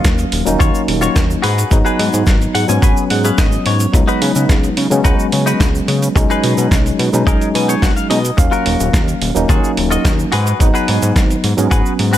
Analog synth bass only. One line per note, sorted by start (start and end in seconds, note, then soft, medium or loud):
0.05 0.25 D#2 medium
0.32 0.43 D#1 medium
0.47 0.57 D#1 medium
0.60 0.71 D#2 loud
0.88 1.08 D#1 medium
1.16 1.36 D#2 medium
1.43 1.64 G#2 loud
1.71 1.82 G#1 loud
1.99 2.10 G#2 medium
2.13 2.23 G#2 medium
2.27 2.47 G#1 medium
2.55 2.65 G#2 medium
2.69 2.79 G#2 medium
2.82 2.93 G#1 loud
3.11 3.31 G#2 medium
3.38 3.58 G#1 medium
3.66 3.86 G#2 loud
3.94 4.04 C#2 medium
4.22 4.32 C#3 medium
4.36 4.46 C#3 medium
4.49 4.70 C#2 medium
4.77 4.87 C#3 medium
4.91 5.01 C#3 medium
5.05 5.15 C#2 loud
5.33 5.53 C#3 medium
5.60 5.81 C#2 medium
5.88 6.08 C#3 loud
6.16 6.26 B1 loud
6.43 6.54 B2 medium
6.57 6.68 B2 medium
6.71 6.92 B1 medium
6.99 7.10 B2 medium
7.13 7.23 B2 medium
7.27 7.37 B1 loud
7.55 7.75 B2 medium
7.82 7.93 B1 medium
8.10 8.31 B2 medium
8.38 8.48 D#2 medium
8.66 8.76 D#1 medium
8.80 8.90 D#1 medium
8.94 9.14 D#2 medium
9.22 9.32 D#1 medium
9.36 9.46 D#1 medium
9.49 9.60 D#2 loud
9.77 9.98 D#1 medium
10.05 10.25 D#2 medium
10.33 10.53 G#2 loud
10.60 10.71 G#1 loud
10.89 10.99 G#2 medium
11.02 11.12 G#2 medium
11.16 11.36 G#1 medium
11.44 11.54 G#2 medium
11.58 11.68 G#2 medium
11.71 11.82 G#1 loud
11.99 12.18 G#2 medium